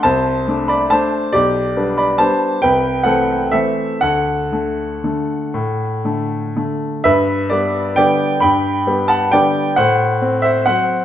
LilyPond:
<<
  \new Staff \with { instrumentName = "Grand piano" } { \time 3/4 \key g \major \tempo 4 = 132 <c'' a''>4. <d'' b''>8 <c'' a''>4 | <g' d''>4. <d'' b''>8 <c'' a''>4 | <b' g''>4 <a' fis''>4 <a' e''>4 | <a' fis''>2.~ |
<a' fis''>2~ <a' fis''>8 r8 | <b' e''>4 <b' d''>4 <d'' g''>4 | <g'' b''>4. <fis'' a''>8 <d'' g''>4 | <c'' fis''>4. <c'' e''>8 <c'' fis''>4 | }
  \new Staff \with { instrumentName = "Grand piano" } { \clef bass \time 3/4 \key g \major c,4 <a d'>4 <a d'>4 | b,,4 <g b d'>4 <g b d'>4 | c,4 <e a c'>4 <e a c'>4 | d,4 <d a>4 <d a>4 |
a,4 <d a>4 <d a>4 | g,4 <g b>4 <d g b>4 | g,4 <g b>4 <d g b>4 | a,4 c'4 <fis c'>4 | }
>>